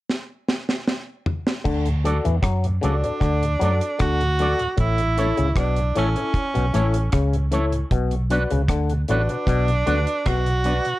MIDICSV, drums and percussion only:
0, 0, Header, 1, 2, 480
1, 0, Start_track
1, 0, Key_signature, 2, "major"
1, 0, Tempo, 781250
1, 1019, Time_signature, 4, 2, 24, 8
1, 6754, End_track
2, 0, Start_track
2, 0, Title_t, "Drums"
2, 59, Note_on_c, 9, 38, 53
2, 121, Note_off_c, 9, 38, 0
2, 298, Note_on_c, 9, 38, 69
2, 360, Note_off_c, 9, 38, 0
2, 423, Note_on_c, 9, 38, 67
2, 485, Note_off_c, 9, 38, 0
2, 538, Note_on_c, 9, 38, 80
2, 599, Note_off_c, 9, 38, 0
2, 775, Note_on_c, 9, 43, 95
2, 836, Note_off_c, 9, 43, 0
2, 901, Note_on_c, 9, 38, 84
2, 962, Note_off_c, 9, 38, 0
2, 1016, Note_on_c, 9, 36, 96
2, 1017, Note_on_c, 9, 49, 76
2, 1077, Note_off_c, 9, 36, 0
2, 1078, Note_off_c, 9, 49, 0
2, 1140, Note_on_c, 9, 42, 50
2, 1202, Note_off_c, 9, 42, 0
2, 1261, Note_on_c, 9, 42, 65
2, 1323, Note_off_c, 9, 42, 0
2, 1383, Note_on_c, 9, 42, 51
2, 1445, Note_off_c, 9, 42, 0
2, 1491, Note_on_c, 9, 36, 111
2, 1496, Note_on_c, 9, 42, 89
2, 1498, Note_on_c, 9, 37, 113
2, 1553, Note_off_c, 9, 36, 0
2, 1557, Note_off_c, 9, 42, 0
2, 1559, Note_off_c, 9, 37, 0
2, 1621, Note_on_c, 9, 42, 51
2, 1683, Note_off_c, 9, 42, 0
2, 1738, Note_on_c, 9, 42, 63
2, 1799, Note_off_c, 9, 42, 0
2, 1866, Note_on_c, 9, 42, 44
2, 1927, Note_off_c, 9, 42, 0
2, 1973, Note_on_c, 9, 36, 89
2, 1977, Note_on_c, 9, 42, 66
2, 1979, Note_on_c, 9, 37, 60
2, 2034, Note_off_c, 9, 36, 0
2, 2038, Note_off_c, 9, 42, 0
2, 2040, Note_off_c, 9, 37, 0
2, 2106, Note_on_c, 9, 42, 52
2, 2167, Note_off_c, 9, 42, 0
2, 2220, Note_on_c, 9, 42, 63
2, 2281, Note_off_c, 9, 42, 0
2, 2343, Note_on_c, 9, 42, 55
2, 2404, Note_off_c, 9, 42, 0
2, 2454, Note_on_c, 9, 42, 82
2, 2457, Note_on_c, 9, 37, 114
2, 2459, Note_on_c, 9, 36, 101
2, 2515, Note_off_c, 9, 42, 0
2, 2519, Note_off_c, 9, 37, 0
2, 2520, Note_off_c, 9, 36, 0
2, 2584, Note_on_c, 9, 42, 43
2, 2646, Note_off_c, 9, 42, 0
2, 2696, Note_on_c, 9, 42, 66
2, 2758, Note_off_c, 9, 42, 0
2, 2822, Note_on_c, 9, 42, 42
2, 2883, Note_off_c, 9, 42, 0
2, 2934, Note_on_c, 9, 42, 78
2, 2937, Note_on_c, 9, 36, 93
2, 2995, Note_off_c, 9, 42, 0
2, 2998, Note_off_c, 9, 36, 0
2, 3060, Note_on_c, 9, 42, 48
2, 3122, Note_off_c, 9, 42, 0
2, 3180, Note_on_c, 9, 42, 61
2, 3242, Note_off_c, 9, 42, 0
2, 3302, Note_on_c, 9, 42, 55
2, 3363, Note_off_c, 9, 42, 0
2, 3414, Note_on_c, 9, 36, 107
2, 3418, Note_on_c, 9, 42, 87
2, 3420, Note_on_c, 9, 37, 109
2, 3475, Note_off_c, 9, 36, 0
2, 3479, Note_off_c, 9, 42, 0
2, 3481, Note_off_c, 9, 37, 0
2, 3541, Note_on_c, 9, 42, 48
2, 3602, Note_off_c, 9, 42, 0
2, 3659, Note_on_c, 9, 42, 67
2, 3721, Note_off_c, 9, 42, 0
2, 3784, Note_on_c, 9, 42, 45
2, 3846, Note_off_c, 9, 42, 0
2, 3895, Note_on_c, 9, 36, 94
2, 3898, Note_on_c, 9, 42, 73
2, 3957, Note_off_c, 9, 36, 0
2, 3960, Note_off_c, 9, 42, 0
2, 4026, Note_on_c, 9, 42, 48
2, 4087, Note_off_c, 9, 42, 0
2, 4141, Note_on_c, 9, 42, 65
2, 4203, Note_off_c, 9, 42, 0
2, 4263, Note_on_c, 9, 42, 52
2, 4325, Note_off_c, 9, 42, 0
2, 4376, Note_on_c, 9, 42, 87
2, 4380, Note_on_c, 9, 37, 114
2, 4382, Note_on_c, 9, 36, 103
2, 4438, Note_off_c, 9, 42, 0
2, 4441, Note_off_c, 9, 37, 0
2, 4443, Note_off_c, 9, 36, 0
2, 4506, Note_on_c, 9, 42, 43
2, 4568, Note_off_c, 9, 42, 0
2, 4619, Note_on_c, 9, 42, 69
2, 4680, Note_off_c, 9, 42, 0
2, 4746, Note_on_c, 9, 42, 47
2, 4808, Note_off_c, 9, 42, 0
2, 4860, Note_on_c, 9, 36, 101
2, 4860, Note_on_c, 9, 42, 88
2, 4921, Note_off_c, 9, 42, 0
2, 4922, Note_off_c, 9, 36, 0
2, 4984, Note_on_c, 9, 42, 46
2, 5045, Note_off_c, 9, 42, 0
2, 5101, Note_on_c, 9, 42, 64
2, 5163, Note_off_c, 9, 42, 0
2, 5225, Note_on_c, 9, 42, 55
2, 5287, Note_off_c, 9, 42, 0
2, 5335, Note_on_c, 9, 36, 106
2, 5337, Note_on_c, 9, 42, 97
2, 5339, Note_on_c, 9, 37, 107
2, 5397, Note_off_c, 9, 36, 0
2, 5398, Note_off_c, 9, 42, 0
2, 5400, Note_off_c, 9, 37, 0
2, 5465, Note_on_c, 9, 42, 51
2, 5526, Note_off_c, 9, 42, 0
2, 5579, Note_on_c, 9, 42, 62
2, 5641, Note_off_c, 9, 42, 0
2, 5708, Note_on_c, 9, 42, 51
2, 5770, Note_off_c, 9, 42, 0
2, 5818, Note_on_c, 9, 36, 93
2, 5822, Note_on_c, 9, 42, 69
2, 5824, Note_on_c, 9, 37, 57
2, 5879, Note_off_c, 9, 36, 0
2, 5883, Note_off_c, 9, 42, 0
2, 5885, Note_off_c, 9, 37, 0
2, 5948, Note_on_c, 9, 42, 47
2, 6010, Note_off_c, 9, 42, 0
2, 6063, Note_on_c, 9, 42, 66
2, 6124, Note_off_c, 9, 42, 0
2, 6186, Note_on_c, 9, 42, 52
2, 6248, Note_off_c, 9, 42, 0
2, 6302, Note_on_c, 9, 42, 79
2, 6305, Note_on_c, 9, 36, 97
2, 6306, Note_on_c, 9, 37, 114
2, 6364, Note_off_c, 9, 42, 0
2, 6366, Note_off_c, 9, 36, 0
2, 6367, Note_off_c, 9, 37, 0
2, 6429, Note_on_c, 9, 42, 45
2, 6490, Note_off_c, 9, 42, 0
2, 6538, Note_on_c, 9, 42, 66
2, 6600, Note_off_c, 9, 42, 0
2, 6665, Note_on_c, 9, 42, 47
2, 6727, Note_off_c, 9, 42, 0
2, 6754, End_track
0, 0, End_of_file